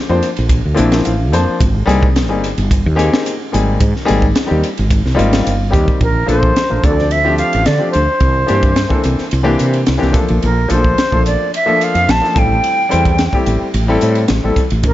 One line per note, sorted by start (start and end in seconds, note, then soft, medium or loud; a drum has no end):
0.09 0.20 F2 medium
0.09 0.26 F3 medium
0.09 0.26 A#3 medium
0.09 0.26 C4 medium
0.09 0.26 D4 medium
0.09 0.26 C5 medium
0.23 hi-hat pedal medium
0.23 ride medium
0.35 0.61 A#1 medium
0.35 0.42 D4 soft
0.35 0.43 A4 soft
0.35 ride medium
0.49 kick medium
0.49 hi-hat pedal medium
0.49 ride medium
0.65 0.76 D2 medium
0.74 1.10 F3 medium
0.74 1.10 A#3 medium
0.74 1.10 C4 medium
0.74 1.10 D4 medium
0.74 1.11 E4 loud
0.74 hi-hat pedal medium
0.74 ride medium
0.79 1.01 A#1 loud
0.92 snare loud
0.92 ride medium
1.05 1.33 A1 medium
1.05 1.31 F5 medium
1.05 hi-hat pedal medium
1.05 ride medium
1.32 1.45 F2 medium
1.32 1.58 F3 medium
1.32 1.58 A#3 medium
1.32 1.58 C4 medium
1.32 1.59 D4 medium
1.32 1.58 C5 medium
1.32 1.59 A5 medium
1.32 hi-hat pedal medium
1.32 ride medium
1.48 muted fretless electric bass stroke soft
1.61 1.83 G#1 medium
1.61 kick loud
1.61 hi-hat pedal medium
1.61 ride medium
1.74 1.81 D#4 soft
1.74 1.81 G#4 soft
1.86 2.30 C2 medium
1.86 2.04 G3 loud
1.86 2.04 A#3 medium
1.86 2.05 C4 medium
1.86 2.05 D#4 medium
1.86 2.05 G#4 loud
1.86 hi-hat pedal medium
1.86 ride medium
2.03 kick medium
2.16 2.23 D#4 soft
2.16 2.23 A#4 soft
2.16 snare medium
2.16 hi-hat pedal medium
2.16 ride medium
2.29 2.53 G1 medium
2.29 2.46 G3 medium
2.29 2.46 A#3 medium
2.29 2.46 C4 medium
2.29 2.46 D#4 medium
2.29 2.46 G#4 medium
2.44 hi-hat pedal medium
2.44 ride medium
2.56 2.88 G1 medium
2.56 2.63 D#4 soft
2.56 2.63 G4 soft
2.56 ride medium
2.71 kick medium
2.71 hi-hat pedal medium
2.71 ride medium
2.86 3.09 D#2 medium
2.96 3.31 A#3 medium
2.96 3.31 C4 medium
2.96 3.32 D#4 medium
2.96 3.31 G4 medium
2.96 3.31 G#4 loud
2.96 hi-hat pedal medium
2.96 ride medium
3.13 snare loud
3.26 hi-hat pedal medium
3.26 ride medium
3.52 3.77 G#1 medium
3.52 3.78 G3 medium
3.52 3.78 A#3 medium
3.52 3.78 C4 medium
3.52 3.79 D#4 medium
3.52 3.79 G#4 medium
3.52 hi-hat pedal medium
3.52 ride medium
3.80 3.93 G#2 medium
3.80 kick loud
3.80 hi-hat pedal medium
3.80 ride medium
3.95 4.01 D#4 soft
3.95 4.02 A#4 soft
3.95 snare soft
4.05 4.24 G3 loud
4.05 4.24 A#3 loud
4.05 4.24 C4 medium
4.05 4.24 D#4 medium
4.05 4.25 G#4 loud
4.05 hi-hat pedal medium
4.05 ride medium
4.10 4.32 G#1 medium
4.22 kick medium
4.34 4.42 D#4 soft
4.34 4.42 F4 soft
4.34 snare loud
4.34 hi-hat pedal medium
4.34 ride medium
4.46 4.65 G3 medium
4.46 4.65 A#3 medium
4.46 4.65 C4 medium
4.46 4.65 D#4 medium
4.46 4.65 G4 medium
4.51 4.62 D#2 medium
4.63 hi-hat pedal medium
4.63 ride medium
4.76 5.01 G#1 medium
4.76 4.83 D#4 soft
4.76 4.83 G#4 soft
4.76 ride medium
4.90 kick medium
4.90 hi-hat pedal medium
4.90 ride medium
5.05 5.16 C2 medium
5.05 snare soft
5.15 5.50 G3 loud
5.15 5.50 A#3 medium
5.15 5.51 C4 medium
5.15 5.51 D#4 medium
5.15 5.51 F4 loud
5.15 5.43 D#5 medium
5.19 5.41 G#1 medium
5.19 hi-hat pedal medium
5.19 ride medium
5.33 snare loud
5.33 ride medium
5.44 5.75 G1 medium
5.44 5.71 F5 medium
5.44 hi-hat pedal medium
5.44 ride medium
5.70 5.86 D#2 medium
5.70 5.97 G3 medium
5.70 5.97 A#3 medium
5.70 5.98 C4 medium
5.70 5.98 D#4 medium
5.70 5.98 G4 medium
5.70 5.98 G5 medium
5.70 kick medium
5.70 hi-hat pedal medium
5.70 ride soft
5.88 muted fretless electric bass stroke soft
5.88 kick medium
6.01 6.24 A#1 medium
6.01 6.27 A#4 medium
6.01 kick medium
6.01 ride medium
6.26 6.51 A#1 medium
6.26 6.53 F3 medium
6.26 6.53 A3 medium
6.26 6.53 A#3 medium
6.26 6.53 D4 medium
6.26 6.54 A4 medium
6.26 hi-hat pedal medium
6.26 ride medium
6.30 6.87 C5 medium
6.43 kick medium
6.56 snare medium
6.56 ride medium
6.70 6.82 A#1 medium
6.70 6.82 F3 medium
6.70 6.82 A3 medium
6.70 6.84 A#3 medium
6.70 6.82 D4 medium
6.70 6.84 A#4 medium
6.84 7.41 D2 medium
6.84 7.17 F3 medium
6.84 7.17 A3 medium
6.84 7.17 C4 medium
6.84 7.17 D4 medium
6.84 7.18 A4 medium
6.84 7.13 D5 medium
6.84 kick medium
6.84 hi-hat pedal medium
6.84 ride medium
6.99 snare soft
7.11 7.37 E5 medium
7.11 ride medium
7.24 7.58 F3 medium
7.24 7.58 A3 medium
7.24 7.58 C4 medium
7.24 7.59 D4 medium
7.24 7.59 G4 medium
7.38 7.68 F5 medium
7.38 hi-hat pedal medium
7.38 ride medium
7.53 7.65 A1 medium
7.53 ride medium
7.66 7.79 D3 medium
7.66 7.91 D5 medium
7.66 snare medium
7.66 ride medium
7.78 7.96 F3 medium
7.78 7.96 A3 medium
7.78 7.96 C4 medium
7.78 7.96 D4 medium
7.78 7.97 G4 medium
7.92 8.07 D2 medium
7.92 8.99 C5 medium
7.92 hi-hat pedal medium
7.92 ride medium
8.06 8.14 D4 soft
8.06 8.14 C5 soft
8.20 8.44 C2 medium
8.20 kick medium
8.20 ride medium
8.46 8.84 G2 medium
8.46 8.73 E3 medium
8.46 8.73 A#3 medium
8.46 8.74 C4 medium
8.46 8.74 D4 medium
8.46 8.74 G4 medium
8.46 hi-hat pedal medium
8.46 ride medium
8.63 kick medium
8.63 ride soft
8.76 snare medium
8.76 ride medium
8.89 9.23 E3 medium
8.89 9.24 A#3 medium
8.89 9.24 C4 medium
8.89 9.24 D4 medium
8.89 9.24 A4 medium
8.89 muted fretless electric bass stroke soft
8.89 kick medium
9.04 9.17 C2 medium
9.04 hi-hat pedal medium
9.04 ride medium
9.18 muted fretless electric bass stroke soft
9.18 snare soft
9.31 9.55 C2 medium
9.31 ride medium
9.43 9.78 E3 loud
9.43 9.79 A#3 loud
9.43 9.79 C4 medium
9.43 9.78 D4 medium
9.43 9.79 G4 loud
9.59 9.83 C3 medium
9.59 hi-hat pedal medium
9.59 ride soft
9.73 ride medium
9.86 10.00 C2 medium
9.86 snare medium
9.86 ride medium
9.98 10.13 E3 medium
9.98 10.11 A#3 medium
9.98 10.14 C4 medium
9.98 10.12 D4 medium
9.98 10.13 G4 medium
9.98 snare soft
10.03 10.13 C2 medium
10.12 10.58 F3 medium
10.12 10.58 A3 medium
10.12 10.58 A#3 medium
10.12 10.59 D4 medium
10.12 10.59 A4 medium
10.12 muted fretless electric bass stroke soft
10.12 kick medium
10.12 snare soft
10.12 hi-hat pedal medium
10.12 ride medium
10.28 10.41 A#1 medium
10.28 ride medium
10.42 10.66 A#1 medium
10.42 10.72 A#4 medium
10.42 ride medium
10.68 10.93 A#1 medium
10.68 10.94 F3 medium
10.68 10.95 A3 medium
10.68 10.95 A#3 medium
10.68 10.95 D4 medium
10.68 10.95 A4 medium
10.68 11.26 C5 medium
10.68 hi-hat pedal medium
10.68 ride medium
10.84 kick medium
10.98 snare medium
10.98 ride medium
11.11 11.35 A#1 medium
11.11 11.45 F3 medium
11.11 11.45 A3 medium
11.11 11.45 A#3 medium
11.11 11.46 D4 medium
11.11 11.46 A4 medium
11.11 kick medium
11.26 11.52 D5 medium
11.26 hi-hat pedal medium
11.26 ride medium
11.54 11.85 E5 medium
11.54 ride medium
11.66 12.00 F3 medium
11.66 12.00 A3 medium
11.66 12.00 A#3 medium
11.66 12.00 D4 medium
11.66 12.00 A4 medium
11.81 12.12 F5 medium
11.81 hi-hat pedal medium
11.81 ride medium
11.95 12.06 F2 medium
11.95 ride medium
12.08 12.20 A#1 medium
12.08 12.40 A5 medium
12.08 snare loud
12.08 ride medium
12.22 12.35 F3 medium
12.22 12.33 A3 medium
12.22 12.35 A#3 medium
12.22 12.36 D4 medium
12.22 12.33 A4 medium
12.22 snare soft
12.34 12.59 A1 medium
12.34 12.80 G3 medium
12.34 12.80 A3 medium
12.34 12.80 C4 medium
12.34 12.80 E4 medium
12.34 12.80 A4 medium
12.34 kick medium
12.34 hi-hat pedal medium
12.34 ride medium
12.39 13.47 G5 medium
12.64 ride medium
12.89 13.15 G3 medium
12.89 13.15 A3 medium
12.89 13.15 C4 medium
12.89 13.16 E4 medium
12.89 13.16 C5 medium
12.89 hi-hat pedal medium
12.89 ride medium
12.93 13.27 E2 medium
13.05 kick medium
13.05 ride soft
13.18 snare medium
13.18 ride medium
13.33 13.66 G3 medium
13.33 13.66 A3 medium
13.33 13.66 C4 medium
13.33 13.67 E4 medium
13.33 13.67 G4 medium
13.33 kick medium
13.46 13.58 A1 medium
13.46 hi-hat pedal medium
13.46 ride medium
13.62 muted fretless electric bass stroke soft
13.74 13.97 A1 medium
13.74 ride medium
13.88 14.21 G3 loud
13.88 14.22 A3 medium
13.88 14.22 C4 medium
13.88 14.22 E4 medium
13.88 14.22 A4 loud
14.01 14.25 A2 medium
14.01 hi-hat pedal medium
14.01 ride soft
14.15 ride medium
14.28 14.41 A1 medium
14.28 snare loud
14.28 ride medium
14.44 14.55 A1 medium
14.44 14.60 G3 medium
14.44 14.60 A3 medium
14.44 14.60 C4 medium
14.44 14.60 E4 medium
14.44 14.61 A4 medium
14.56 muted fretless electric bass stroke soft
14.56 kick medium
14.56 hi-hat pedal medium
14.56 ride soft
14.70 14.82 A1 medium
14.70 14.77 E4 soft
14.70 14.78 A4 soft
14.70 ride medium
14.83 14.94 A#1 medium
14.83 14.94 A#4 medium
14.83 kick medium
14.83 ride medium